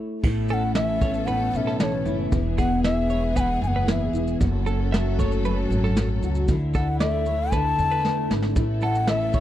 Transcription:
Already playing: A3 E4
0.23 A1 A2 B3 C#4 E4 A4, kick, crash
0.49 C#4 A4 G#5, shaker
0.54 F#5
0.75 E3 E5, snare, shaker
1.01 B3 C#5, kick, shaker
1.14 shaker
1.26 A2 B4 F#5, shaker
1.52 B1 C#4 F#5, shaker
1.56 E5
1.67 A4, snare
1.80 E3 C#5 D5, snare, shaker
2.05 F#1 E4, shaker
2.32 E1 E2 E3 E4 G#4, kick, shaker
2.58 B3 G#4 F#5, kick, shaker
2.83 E3 E5, snare, shaker
3.10 G#3 C#5, shaker
3.36 E2 B4 G#5, kick, shaker
3.40 F#5
3.61 F#1 B3 G#5, shaker
3.68 F#5
3.76 B4
3.87 E3, snare, shaker
3.91 E5
4.13 E1 E4, shaker
4.27 shaker
4.40 F#1 F#2 F#3 C#4 F#4 A4, kick, shaker
4.66 C#4 A4, shaker
4.92 F#3 E5, snare, shaker
5.18 A3 C#5, kick, shaker
5.32 shaker
5.45 F#2 B4, shaker
5.70 G#1 C#4, shaker
5.84 A4, snare
5.97 F#3, snare, shaker
6.22 C#2 F#4, shaker
6.35 shaker
6.48 D2 D3 A3 E4, kick, shaker
6.74 D4 A4 F#5, kick, shaker
7.00 A3 D5 E5, snare, shaker
7.26 A3 C#5, shaker
7.52 D3 B4 A5, kick, shaker
7.79 E2 D4, shaker
7.91 B4, shaker
8.05 A3, snare
8.31 G#1 E4, snare
8.42 snare
8.55 A1 A2 B3 C#4 E4 A4, kick, shaker
8.81 C#4 A4 F#5, shaker
8.95 shaker
9.07 E3 E5, snare, shaker
9.33 B3 C#5, kick, shaker

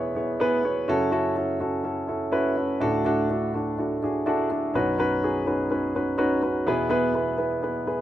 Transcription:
Already playing: E2 B2 B3 E4 G#4 B4 C#5
0.15 B3 E4 G#4 C#5
0.40 B3 E4 G#4 B4
0.63 B3 E4 G#4 C#5
0.88 F#2 C#3 C#4 E4 F#4 A4
1.11 C#4 E4 F#4 A4
1.35 C#4 E4 F#4 A4
1.60 C#4 E4 F#4 A4
1.84 C#4 E4 F#4 A4
2.07 C#4 E4 F#4 A4
2.32 C#4 E4 F#4 B4
2.56 C#4 E4 F#4 A4
2.80 D2 A2 D4 E4 F#4 A4
3.05 D4 E4 F#4 A4
3.30 D4 E4 F#4 A4
3.54 D4 E4 F#4 A4
3.78 D4 E4 F#4 A4
4.03 D4 E4 F#4 G#4
4.26 D4 E4 F#4 A4
4.50 D4 E4 F#4 A4
4.74 B1 F#2 C#4 D#4 F#4 B4
4.98 C#4 D#4 F#4 B4
5.23 C#4 D#4 F#4 G#4
5.46 C#4 D#4 F#4 B4
5.70 C#4 D#4 F#4 B4
5.95 C#4 D#4 F#4 B4
6.18 C#4 D#4 F#4 B4
6.42 C#4 D#4 F#4 B4
6.66 E2 B2 B3 E4 G#4 B4
6.89 B3 E4 G#4 B4
7.14 B3 E4 G#4 B4
7.38 B3 E4 G#4 B4
7.62 B3 E4 G#4 B4
7.86 B3 E4 G#4 B4

